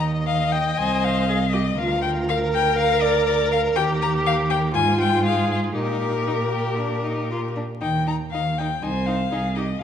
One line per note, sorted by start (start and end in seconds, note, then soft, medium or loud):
0.00 0.74 D#2 medium
0.00 1.73 D#5 medium
0.27 0.54 F5 loud
0.52 0.79 G5 medium
0.78 1.76 C2 medium
0.78 1.25 C5 medium
0.78 1.06 G#5 loud
1.04 1.55 F5 loud
1.29 1.37 G#4 medium
1.53 1.61 G4 medium
1.53 1.80 D#5 medium
1.78 3.71 D2 medium
1.78 2.30 F4 medium
1.78 4.70 A#4 medium
1.78 2.02 F5 loud
2.02 2.10 G5 medium
2.29 3.78 A#4 medium
2.29 2.37 F5 loud
2.54 2.78 G5 loud
2.78 3.03 F5 loud
3.02 3.26 D5 loud
3.27 3.50 D5 loud
3.52 3.60 F5 loud
3.76 4.76 D#2 medium
3.76 4.74 G4 loud
3.76 3.84 G5 loud
4.02 4.10 A#5 loud
4.26 4.34 F5 loud
4.50 4.58 G5 loud
4.74 5.75 G#2 medium
4.74 5.72 F4 medium
4.74 5.24 F4 medium
4.74 4.99 G#5 loud
5.01 5.25 G5 loud
5.25 5.75 G#4 medium
5.25 5.50 F5 medium
5.52 5.60 F5 medium
5.74 7.58 A#2 medium
5.74 6.18 D#4 medium
5.74 7.53 G4 medium
5.74 7.52 A#4 medium
6.27 6.35 D#4 medium
6.52 6.80 G4 medium
6.78 7.05 D4 medium
7.03 7.30 D#4 medium
7.31 7.39 F4 medium
7.56 7.64 D4 soft
7.81 8.27 D#2 medium
7.81 7.89 D#4 medium
7.81 8.06 G5 medium
8.07 8.15 D#4 soft
8.07 8.16 A#5 medium
8.31 8.77 D#2 medium
8.31 8.42 D#4 soft
8.31 8.60 F5 medium
8.58 8.67 D#4 soft
8.58 8.85 G5 medium
8.83 9.26 C2 medium
8.83 8.91 D#4 soft
8.83 9.29 C5 medium
8.83 9.08 G#5 medium
9.06 9.15 D#4 soft
9.06 9.57 F5 medium
9.32 9.75 C2 medium
9.32 9.40 D#4 medium
9.32 9.56 G#4 medium
9.56 9.64 D#4 soft
9.56 9.65 G4 medium
9.56 9.81 D#5 medium
9.80 9.83 F5 medium